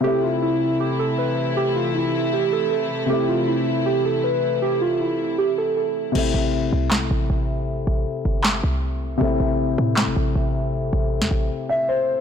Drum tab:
CC |----------------|----------------|----------------|----------------|
CP |----------------|----------------|----------------|----------------|
SD |----------------|----------------|----------------|----------------|

CC |x---------------|----------------|----------------|----------------|
CP |--------x-------|--------x-------|--------x-------|----------------|
SD |--------o-------|--------o-------|--------o-------|-----o----------|